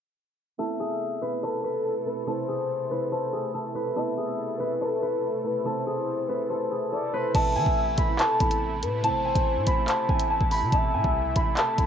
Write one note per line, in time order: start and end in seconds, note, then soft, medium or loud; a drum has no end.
0.58 7.31 C3 medium
0.58 1.02 A3 medium
0.58 7.31 A3 medium
0.58 1.02 B3 medium
0.58 1.02 C4 medium
0.58 7.31 E4 medium
0.58 1.03 E4 loud
0.58 0.86 A4 medium
0.58 3.93 A4 medium
0.58 1.39 E5 loud
0.80 1.49 G#4 medium
1.21 1.29 B2 medium
1.21 1.29 A3 medium
1.21 1.29 C4 medium
1.21 1.30 E4 medium
1.21 1.64 B4 medium
1.31 1.83 A3 medium
1.31 1.83 B3 medium
1.31 1.83 C4 medium
1.31 1.84 E4 medium
1.43 2.27 A4 medium
1.43 2.03 A4 loud
1.64 2.91 B4 medium
2.05 2.20 B2 medium
2.05 2.21 A3 medium
2.05 2.21 C4 medium
2.05 2.21 E4 medium
2.05 2.27 B4 medium
2.27 2.71 C3 loud
2.27 2.71 A3 medium
2.27 2.71 C4 medium
2.27 2.72 E4 loud
2.27 2.55 A4 loud
2.27 3.08 C5 loud
2.49 3.18 G#4 medium
2.90 3.48 C3 medium
2.90 3.49 A3 medium
2.90 3.49 C4 medium
2.90 3.49 E4 medium
2.90 3.75 B4 medium
3.12 3.39 A4 medium
3.12 3.52 C5 medium
3.33 3.60 G#4 medium
3.54 3.96 A4 medium
3.74 3.89 B2 medium
3.74 3.90 A3 medium
3.74 3.90 C4 medium
3.74 3.90 E4 medium
3.74 4.60 B4 medium
3.96 4.40 A3 medium
3.96 4.40 B3 loud
3.96 4.40 C4 medium
3.96 4.41 E4 loud
3.96 7.31 A4 medium
3.96 4.24 A4 medium
3.96 4.77 E5 loud
4.18 4.87 G#4 medium
4.59 4.67 B2 medium
4.59 4.67 A3 medium
4.59 4.67 C4 medium
4.59 5.02 B4 medium
4.70 5.21 A3 medium
4.70 5.21 B3 medium
4.70 5.22 C4 medium
4.70 5.22 E4 medium
4.81 5.41 A4 medium
4.81 5.65 A4 medium
5.02 6.29 B4 medium
5.43 5.58 B2 medium
5.43 5.59 A3 medium
5.43 5.59 C4 medium
5.43 5.59 E4 medium
5.43 5.64 B4 medium
5.64 6.09 C3 loud
5.64 6.09 A3 medium
5.64 6.09 C4 medium
5.64 6.10 E4 loud
5.64 5.93 A4 medium
5.64 6.46 C5 loud
5.87 6.56 G#4 medium
6.28 6.86 C3 medium
6.28 6.87 A3 medium
6.28 6.87 C4 medium
6.28 7.13 B4 medium
6.50 6.77 A4 medium
6.50 6.90 C5 medium
6.71 6.98 G#4 medium
6.92 7.62 A4 medium
6.92 7.12 D5 medium
7.12 7.28 B2 medium
7.12 7.28 A3 medium
7.12 7.28 C4 medium
7.12 7.29 E4 medium
7.12 9.18 B4 medium
7.12 7.33 C5 medium
7.33 7.57 A1 loud
7.33 7.56 B2 loud
7.33 11.87 C3 medium
7.33 7.56 A3 loud
7.33 11.87 A3 medium
7.33 7.57 C4 medium
7.33 11.87 E4 medium
7.33 7.57 E4 loud
7.33 8.15 E5 loud
7.33 7.62 A5 medium
7.33 kick loud
7.33 closed hi-hat medium
7.33 crash loud
7.56 7.66 E3 loud
7.56 8.25 G#5 medium
7.65 7.97 A1 loud
7.65 7.95 B2 medium
7.65 7.95 A3 medium
7.65 7.96 C4 medium
7.65 kick loud
7.98 8.18 A1 loud
7.98 8.40 B5 medium
7.98 kick medium
7.98 closed hi-hat medium
8.08 8.30 B2 medium
8.08 8.30 A3 medium
8.08 8.31 C4 medium
8.08 8.31 E4 medium
8.19 8.79 A4 loud
8.19 9.03 A5 medium
8.19 clap loud
8.19 closed hi-hat medium
8.39 8.84 A1 loud
8.39 8.84 A3 medium
8.39 8.83 B3 medium
8.39 8.84 C4 medium
8.39 8.84 E4 medium
8.39 9.67 B5 medium
8.39 kick loud
8.39 closed hi-hat medium
8.51 closed hi-hat medium
8.82 9.10 A2 loud
8.82 9.03 B4 medium
8.82 closed hi-hat loud
9.02 9.54 C3 loud
9.02 9.54 A3 loud
9.02 9.54 C4 medium
9.02 9.55 E4 loud
9.02 9.84 C5 loud
9.02 9.31 A5 loud
9.02 closed hi-hat medium
9.09 9.34 A1 loud
9.25 9.94 G#5 medium
9.35 9.58 A1 loud
9.35 kick loud
9.35 closed hi-hat medium
9.56 9.66 A2 loud
9.67 9.87 A1 loud
9.67 10.51 B5 medium
9.67 kick medium
9.67 closed hi-hat medium
9.77 9.99 B2 medium
9.77 9.99 A3 medium
9.77 10.00 C4 medium
9.77 10.00 E4 medium
9.88 10.28 C5 medium
9.88 10.15 A5 medium
9.88 clap loud
9.88 closed hi-hat medium
10.09 10.40 A1 loud
10.09 10.53 A3 medium
10.09 10.53 B3 medium
10.09 10.53 C4 medium
10.09 10.54 E4 medium
10.09 10.36 G#5 medium
10.09 kick loud
10.20 closed hi-hat medium
10.30 10.72 A5 medium
10.41 10.64 A1 loud
10.41 kick medium
10.51 11.36 B5 medium
10.51 open hi-hat medium
10.62 10.72 C3 loud
10.72 10.95 A1 loud
10.72 10.94 B2 loud
10.72 10.94 A3 medium
10.72 10.95 C4 medium
10.72 10.95 E4 loud
10.72 11.53 E5 loud
10.72 11.00 A5 medium
10.72 kick loud
10.72 closed hi-hat medium
10.94 11.04 A2 loud
10.94 11.63 G#5 medium
11.03 11.35 C2 loud
11.03 11.33 B2 medium
11.03 11.33 A3 medium
11.03 11.33 C4 medium
11.03 11.34 E4 medium
11.03 kick loud
11.36 11.56 A1 loud
11.36 11.78 B5 medium
11.36 kick medium
11.36 closed hi-hat medium
11.45 11.68 B2 medium
11.45 11.68 A3 medium
11.45 11.68 C4 medium
11.45 11.69 E4 medium
11.57 11.87 A4 medium
11.57 11.87 A5 medium
11.57 clap loud
11.57 closed hi-hat medium
11.77 11.87 A1 loud
11.77 11.87 A3 medium
11.77 11.87 B3 medium
11.77 11.87 C4 medium
11.77 11.87 E4 medium
11.77 11.87 B5 medium
11.77 kick loud
11.77 closed hi-hat medium